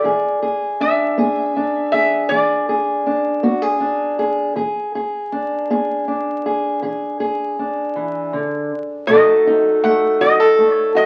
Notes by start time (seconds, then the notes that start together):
Already playing: E4 D5
0.04 E3 G#4
0.42 G#4
0.80 D4 E5
1.18 B3 G#4
1.56 D4
1.92 G#4 E5
2.29 E3 G#4 D5
2.69 G#4
3.06 D4
3.43 B3 F#4
3.62 G#4
3.80 D4
4.19 G#4
4.55 E3 G#4
4.95 G#4
5.32 D4
5.70 B3 G#4
6.08 D4
6.46 G#4
6.82 E3 G#4
7.20 G#4
7.59 D4
7.96 E3
8.33 D3
9.07 B2 F#3 A3 D#4 A4 D#5
9.47 D#4
9.84 A3 F#5
10.21 F#3 F#4 D#5
10.40 A4
10.59 A3
10.73 C#5
10.95 F#4 D#5